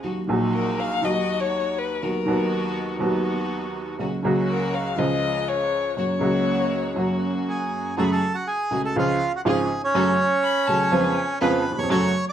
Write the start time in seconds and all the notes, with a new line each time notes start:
0.03 D#2 D#3 F#3 A#3 D#4 F#4
0.27 A#1 A#2 D#3 F#3 A#3 D#4 F#4
0.53 A#4
0.80 F5
1.01 D#2 D#3 F#3 A#3 D#4 F#4 D#5
1.05 F#4
1.40 C#5
1.78 B4
2.02 D#2 D#3 F#3 B3 D#4 F#4 A#4
2.26 D#2 D#3 F#3 B3 D#4 F#4
2.98 D#2 D#3 F#3 B3 D#4 F#4
3.99 C#2 C#3 F#3 A#3 C#4 F#4
4.23 C#2 C#3 F#3 A#3 C#4 F#4
4.49 A#4
4.74 F5
4.97 C#2 C#3 F3 G#3 C#4 F4 D#5
5.48 C#5
5.96 F#2 C#3 F#3 A#3 C#4 F#4 C#5
6.19 C#2 C#3 F#3 A#3 C#4 F#4
6.94 F#2 C#3 F#3 A#3 C#4 F#4
6.98 F#4
7.48 G#4 G#5
7.96 F#2 C#3 F#3 G#3 A3 F#4 G#4 A4 A5
8.03 B5
8.11 A4 A5
8.34 F#4 F#5
8.47 G#4 G#5
8.71 C#2 C#3 G#3 A3 F#4 G#4
8.85 A4 A5
8.96 C#2 C#3 F3 G#3 C#4 F4 G#4 F5
9.36 F#4 F#5
9.45 G#1 G#2 C#3 F3 G#3 C#4 F4 G#4 G#5
9.84 C#4 C#5
9.94 F#2 C#3 F#3 A3 C#4 F#4 A4
10.44 B5
10.67 C#2 C#3 F#3 A3 C#4 F#4 A4 A5
10.91 F2 C#3 F3 G#3 B3 C#4 F4 B4 G#5
11.41 F2 C#3 F3 G#3 B3 C#4 F4 B4 B5
11.71 D#2
11.78 E2 C#5 C#6
11.83 F2
11.90 F#2 C#3 F#3 A3 C#4 F#4 A4 C#5 C#6
12.29 D6